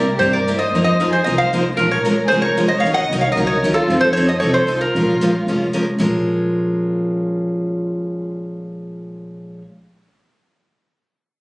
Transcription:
0.00 0.17 A#4 medium
0.00 0.20 D5 medium
0.18 0.62 G2 medium
0.18 0.39 C3 medium
0.18 0.32 G4 medium
0.18 0.33 C5 medium
0.22 0.39 G3 medium
0.22 0.39 A#3 medium
0.22 0.39 E4 medium
0.22 0.39 G4 medium
0.33 0.57 A#4 medium
0.33 0.58 D5 medium
0.48 0.57 C3 medium
0.48 0.57 G3 medium
0.48 0.57 A#3 medium
0.48 0.58 E4 medium
0.48 0.58 G4 medium
0.58 0.84 C5 medium
0.58 0.83 D#5 medium
0.73 1.15 F2 medium
0.73 0.92 F3 medium
0.73 0.92 A#3 medium
0.73 0.92 D#4 medium
0.73 0.92 F4 medium
0.73 0.92 A#4 medium
0.84 1.10 C5 medium
0.84 1.13 D#5 medium
1.00 1.09 F3 medium
1.00 1.10 A#3 medium
1.00 1.10 D#4 medium
1.00 1.10 F4 medium
1.00 1.10 A#4 medium
1.11 1.23 G#4 medium
1.11 1.25 C5 medium
1.23 1.68 C2 medium
1.23 1.44 F3 medium
1.23 1.44 A#3 medium
1.23 1.44 D#4 medium
1.23 1.44 F4 medium
1.23 1.44 A#4 medium
1.23 1.37 C5 medium
1.23 1.38 D#5 medium
1.37 1.65 C5 medium
1.37 1.65 F5 medium
1.53 1.62 F3 medium
1.53 1.63 A#3 medium
1.53 1.63 D#4 medium
1.53 1.63 F4 medium
1.53 1.63 A#4 medium
1.75 2.20 A#1 medium
1.75 1.97 F3 medium
1.75 1.97 G#3 medium
1.75 1.96 C#4 medium
1.75 1.92 F4 medium
1.75 1.97 F4 medium
1.75 1.91 A#4 medium
1.75 1.97 A#4 medium
1.90 2.26 A#4 medium
1.90 2.28 C#5 medium
2.05 2.15 F3 medium
2.05 2.15 G#3 medium
2.05 2.15 C#4 medium
2.05 2.15 F4 medium
2.05 2.15 A#4 medium
2.27 2.41 G#4 medium
2.27 2.41 C5 medium
2.31 2.73 F1 medium
2.31 2.49 F3 medium
2.31 2.49 G#3 medium
2.31 2.49 C#4 medium
2.31 2.50 F4 medium
2.31 2.49 A#4 medium
2.42 2.67 A#4 medium
2.42 2.68 C#5 medium
2.57 2.67 F3 medium
2.57 2.67 G#3 medium
2.57 2.68 C#4 medium
2.57 2.68 F4 medium
2.57 2.68 A#4 medium
2.68 2.78 C5 medium
2.68 2.82 D#5 medium
2.79 2.93 C#5 medium
2.79 2.94 F5 medium
2.84 3.05 D#2 medium
2.84 3.03 D#3 medium
2.84 3.03 F#3 medium
2.84 3.03 C#4 medium
2.84 3.03 D#4 medium
2.84 3.03 A#4 medium
2.94 3.20 D#5 medium
2.94 3.21 F#5 medium
3.10 3.32 C2 medium
3.10 3.21 D#3 medium
3.10 3.21 F#3 medium
3.10 3.21 C#4 medium
3.10 3.22 D#4 medium
3.10 3.22 A#4 medium
3.20 3.32 C#5 medium
3.20 3.31 F5 medium
3.32 3.58 C#2 medium
3.32 3.46 A#4 medium
3.32 3.49 D#5 medium
3.37 3.55 D#3 medium
3.37 3.55 F#3 medium
3.37 3.55 C#4 medium
3.37 3.55 D#4 medium
3.37 3.55 A#4 medium
3.46 3.74 A#4 medium
3.46 3.76 C#5 medium
3.62 3.85 D#2 medium
3.62 3.73 D#3 medium
3.62 3.74 F#3 medium
3.62 3.74 C#4 medium
3.62 3.74 D#4 medium
3.62 3.74 A#4 medium
3.74 4.01 F4 medium
3.74 4.03 A4 medium
3.88 4.31 F2 medium
3.88 4.08 F3 medium
3.88 4.08 C4 medium
3.88 4.08 D#4 medium
3.88 4.08 A4 medium
4.01 4.15 A4 medium
4.01 4.12 C5 medium
4.13 4.26 F3 medium
4.13 4.29 A4 medium
4.13 4.29 C#5 medium
4.17 4.26 C4 medium
4.17 4.27 D#4 medium
4.17 4.27 A4 medium
4.29 4.40 C5 medium
4.29 4.39 D#5 medium
4.40 4.84 C2 medium
4.40 4.60 F3 medium
4.40 4.60 C4 medium
4.40 4.61 D#4 medium
4.40 4.54 A4 medium
4.40 4.61 A4 medium
4.40 4.53 C#5 medium
4.54 4.79 A4 medium
4.54 4.82 C5 medium
4.67 4.78 F3 medium
4.67 4.78 C4 medium
4.67 4.78 D#4 medium
4.67 4.78 A4 medium
4.80 5.68 F4 medium
4.80 5.69 A#4 medium
4.95 5.37 A#1 medium
4.95 5.14 F3 medium
4.95 5.14 G#3 medium
4.95 5.14 C#4 medium
4.95 5.14 F4 medium
4.95 5.14 A#4 medium
5.21 5.31 F3 medium
5.21 5.31 G#3 medium
5.21 5.32 C#4 medium
5.21 5.32 F4 medium
5.21 5.32 A#4 medium
5.47 5.89 F1 medium
5.47 5.66 F3 medium
5.47 5.66 G#3 medium
5.47 5.66 C#4 medium
5.47 5.66 F4 medium
5.47 5.67 A#4 medium
5.73 5.84 F3 medium
5.73 5.84 G#3 medium
5.73 5.84 C#4 medium
5.73 5.84 F4 medium
5.73 5.85 A#4 medium
5.98 9.57 A#1 medium
5.98 9.61 A#2 medium
5.98 9.61 F3 medium
5.98 9.61 G#3 medium
5.98 9.61 C#4 medium
5.98 9.62 F4 medium
5.98 9.62 A#4 medium

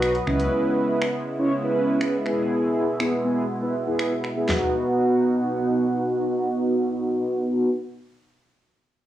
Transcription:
0.00 0.17 B1 medium
0.00 0.26 F#3 medium
0.00 4.45 B3 medium
0.00 0.16 D#4 loud
0.00 0.17 F#4 loud
0.00 0.17 B4 loud
0.00 2.22 D#5 medium
0.00 finger snap loud
0.00 closed hi-hat medium
0.15 closed hi-hat medium
0.27 0.47 C#2 medium
0.27 2.24 C#3 medium
0.27 4.45 G#3 medium
0.27 1.07 C#4 loud
0.27 4.45 E4 medium
0.27 1.07 E4 medium
0.27 1.07 B4 loud
0.27 finger snap medium
0.40 closed hi-hat medium
1.02 finger snap loud
1.39 1.52 C#4 loud
1.39 1.52 E4 medium
1.39 1.52 C#5 loud
1.63 2.16 C#4 medium
1.63 2.16 E4 medium
1.63 2.16 B4 loud
2.01 finger snap loud
2.25 4.46 B2 medium
2.25 2.85 B3 loud
2.25 2.85 E4 medium
2.25 2.85 G#4 loud
2.25 finger snap medium
3.00 3.13 B3 loud
3.00 3.13 E4 medium
3.00 3.13 G#4 loud
3.00 finger snap loud
3.24 3.44 B3 medium
3.24 3.44 E4 medium
3.24 3.45 G#4 loud
3.62 3.75 B3 medium
3.62 3.75 E4 medium
3.62 3.75 B4 medium
3.86 4.13 B3 loud
3.86 4.13 E4 medium
3.86 4.13 G#4 loud
3.99 finger snap loud
4.24 finger snap medium
4.36 4.48 B3 medium
4.36 4.49 E4 medium
4.36 4.49 G#4 loud
4.49 7.70 B2 medium
4.49 7.70 B3 medium
4.49 7.70 D#4 medium
4.49 7.70 F#4 medium
4.49 7.70 F#5 medium
4.49 snare medium
4.49 clap medium
4.49 floor tom medium

